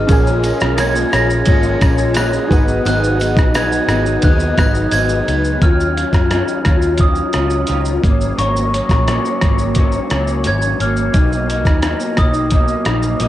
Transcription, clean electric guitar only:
0.07 A#2 F3 G#3 C#4
0.41 F3 G#3 C#4
0.76 A#2 F3 G#3 C#4
1.11 F3 G#3 C#4
1.45 A#2 F3 G#3 C#4
1.80 F3 G#3 C#4
2.15 A#2 F3 G#3 C#4
2.50 F#3 B3 D#4
2.85 G#2 F#3 B3 D#4
3.19 F#3 B3 D#4
3.53 G#2 F#3 B3 D#4
3.88 F#3 B3 D#4
4.23 G#2 F#3 B3 D#4
4.57 F#3 B3 D#4
4.91 G#2 F#3 B3 D#4
5.27 F#3 B3 D#4
5.62 D#3 F#3 C#4 F4
5.95 F#3 C#4 F4
6.30 D#3 F#3 C#4 F4
6.65 F#3 C#4 F4
6.99 D#3 F#3 C#4 F4
7.34 F#3 C#4 F4
7.68 D#3 F#3 C#4 F4
8.03 F#3 A#3 C#4
8.37 G#2 F#3 A#3 C#4
8.72 F#3 A#3 C#4
9.07 G#2 F#3 A#3 C#4
9.42 F#3 A#3 C#4
9.76 G#2 F#3 A#3 C#4
10.10 F#3 A#3 C#4
10.44 G#2 F#3 A#3 C#4
10.79 F#3 A#3 C#4
11.12 B2 F#3 A#3 D#4
11.47 F#3 A#3 D#4
11.82 B2 F#3 A#3 D#4
12.16 F#3 A#3 D#4
12.51 B2 F#3 A#3 D#4
12.85 F#3 A#3 D#4
13.20 F#3 A#3 D#4

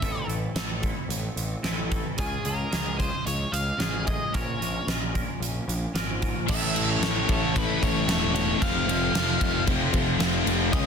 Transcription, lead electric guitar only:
Already playing: E5
2.20 G#4
2.45 A#4
2.99 C5
3.26 C#5
3.52 F5
4.07 D#5
4.35 C#5
6.50 E5
6.91 C#5
7.31 C#5
7.57 B4
7.83 C#5
8.35 C#5
8.62 F5
10.73 D#5

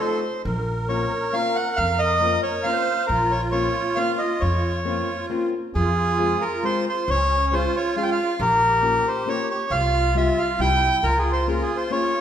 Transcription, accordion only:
Already playing: A4
0.45 A#4
2.67 C5
3.11 F4
4.87 F4
5.76 F4
7.10 C#4
7.54 F4
8.41 G4
9.73 F4
10.59 E4
11.03 F4

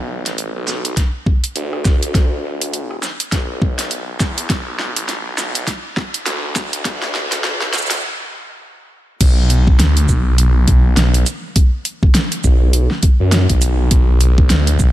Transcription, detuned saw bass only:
Already playing: B1
0.26 A1
0.55 B1
0.68 B1
1.56 D2
1.85 D2
2.44 D2
3.32 B1
4.20 E2
4.50 B1
4.96 A1
5.25 B1
5.37 B1
6.26 D2
6.56 D2
7.14 D2
7.73 D2
9.21 B1
9.79 D2
10.09 B1
10.97 B1
12.44 B1
13.20 F#2
13.50 B1
13.91 B1
14.50 D2
14.80 B1

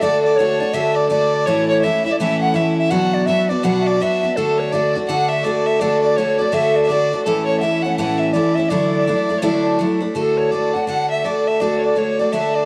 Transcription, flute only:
0.03 D5
0.23 D5
0.36 C#5
0.60 D5
0.73 E5
0.96 D5
1.11 D5
1.47 C#5
1.69 C#5
1.84 E5
2.07 E5
2.13 D5
2.20 E5
2.42 F#5
2.56 E5
2.78 E5
2.91 F#5
3.14 D5
3.26 E5
3.49 D5
3.65 F#5
3.81 E5
3.87 D5
4.01 E5
4.37 A4
4.60 C#5
4.73 D5
5.09 F#5
5.31 E5
5.45 D5
5.67 E5
5.81 D5
6.04 D5
6.17 C#5
6.41 D5
6.54 E5
6.76 D5
6.90 D5
7.26 A4
7.47 C#5
7.59 F#5
7.63 E5
7.85 F#5
7.99 F#5
8.19 E5
8.33 D5
8.55 E5
8.70 D5
10.16 A4
10.37 C#5
10.52 D5
10.75 F#5
10.89 F#5
11.11 E5
11.25 D5
11.48 E5
11.62 D5
11.84 D5
11.97 C#5
12.20 D5
12.35 E5
12.56 D5

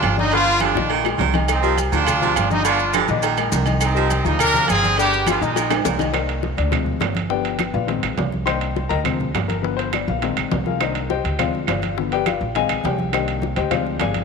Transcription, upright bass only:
0.04 G1
0.75 A#1
1.19 C2
1.92 D2
2.36 G1
3.09 A#1
3.52 C2
4.25 D2
4.69 G1
5.41 A#1
5.85 C2
6.58 D2
7.01 G1
7.74 A#1
8.03 A#1
8.18 C2
8.90 D2
9.34 G1
10.08 A#1
10.37 A#1
10.52 C2
11.24 D2
11.68 G1
12.41 A#1
12.70 A#1
12.85 C2
13.57 D2
14.00 G1

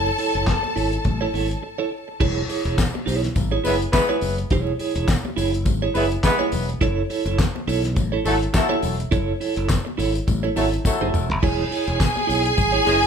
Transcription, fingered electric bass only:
Already playing: F#1
0.35 F#1
0.77 G#1
1.05 A1
1.34 G#1
2.21 E1
2.65 E1
3.07 B1
3.36 G#1
3.64 F#1
4.22 F#1
4.51 E1
4.96 E1
5.37 F#1
5.66 G#1
5.95 F#1
6.53 E1
6.81 F#1
7.26 F#1
7.67 B1
7.97 A1
8.25 G#1
8.83 E1
9.12 F#1
9.57 F#1
9.99 G#1
10.28 A1
10.57 G#1
11.02 F#1
11.15 E1
11.31 F#1
11.43 E1
11.88 E1
12.29 B1
12.58 G#1
12.87 F#1

